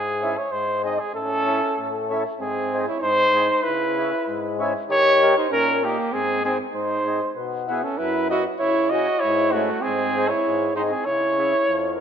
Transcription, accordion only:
0.00 0.36 G#2 medium
0.22 0.35 C#4 medium
0.22 0.35 E4 medium
0.22 0.35 G#4 medium
0.51 0.98 G#2 medium
0.84 0.97 C4 medium
0.84 0.97 D#4 medium
0.84 0.97 G#4 medium
1.13 1.61 A2 medium
1.46 1.59 C#4 medium
1.46 1.60 E4 medium
1.46 1.60 A4 medium
1.77 2.24 A2 medium
2.10 2.23 C#4 medium
2.10 2.23 E4 medium
2.10 2.24 A4 medium
2.40 2.87 G#2 medium
2.73 2.86 C4 medium
2.73 2.86 D#4 medium
2.73 2.87 G#4 medium
3.02 3.49 G#2 medium
3.34 3.48 C4 medium
3.34 3.48 D#4 medium
3.34 3.48 G#4 medium
3.66 4.12 C#3 medium
3.97 4.10 C#4 medium
3.97 4.11 E4 soft
3.97 4.11 G#4 medium
4.27 4.74 G#2 medium
4.59 4.72 C#4 medium
4.59 4.73 E4 medium
4.59 4.73 G#4 medium
4.89 5.35 D#3 medium
5.22 5.35 A#3 medium
5.22 5.35 D#4 medium
5.22 5.35 G4 medium
5.51 5.97 A#2 medium
5.83 5.96 A#3 medium
5.83 5.96 D#4 medium
5.83 5.97 G4 medium
6.13 6.59 G#2 medium
6.44 6.58 C4 medium
6.44 6.58 D#4 medium
6.44 6.58 G#4 medium
6.73 7.20 G#2 medium
7.06 7.20 C4 medium
7.06 7.20 D#4 medium
7.06 7.20 G#4 medium
7.36 7.83 B2 medium
7.68 7.82 B3 medium
7.68 7.82 E4 medium
7.68 7.82 F#4 medium
7.99 8.46 F#2 medium
8.30 8.44 B3 medium
8.30 8.45 E4 medium
8.30 8.45 F#4 medium
8.61 9.08 C#3 medium
8.93 9.06 C#4 medium
8.93 9.07 E4 medium
8.93 9.07 G#4 medium
9.24 9.70 G#2 medium
9.55 9.68 C#4 medium
9.55 9.69 E4 medium
9.55 9.69 G#4 medium
9.85 10.31 G#2 medium
10.16 10.30 C4 medium
10.16 10.30 D#4 medium
10.16 10.30 G#4 medium
10.47 10.93 G#2 medium
10.78 10.91 C4 medium
10.78 10.92 D#4 medium
10.78 10.92 G#4 medium
11.06 11.53 C#3 soft
11.39 11.53 C#4 medium
11.39 11.53 E4 medium
11.39 11.53 G#4 medium
11.68 12.00 F2 medium

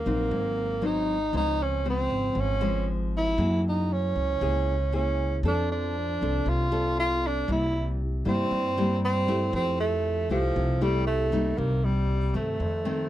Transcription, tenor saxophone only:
0.00 0.87 A#3 medium
0.86 1.35 D#4 loud
1.37 1.64 D#4 loud
1.63 1.87 C#4 medium
1.90 2.42 C4 medium
2.40 2.88 C#4 medium
3.17 3.63 E4 medium
3.69 3.94 D#4 medium
3.93 4.94 C#4 medium
4.95 5.41 C#4 medium
5.47 5.69 D4 medium
5.72 6.50 D4 medium
6.49 6.98 F4 medium
6.99 7.28 F4 loud
7.27 7.50 D4 medium
7.52 7.96 E4 medium
8.28 8.99 C4 medium
9.05 9.51 C4 loud
9.55 9.78 C4 loud
9.80 10.27 A3 medium
10.31 10.84 F3 medium
10.83 11.06 G3 medium
11.07 11.60 A3 medium
11.58 11.86 A#3 medium
11.85 12.35 G3 medium
12.36 13.09 A3 medium

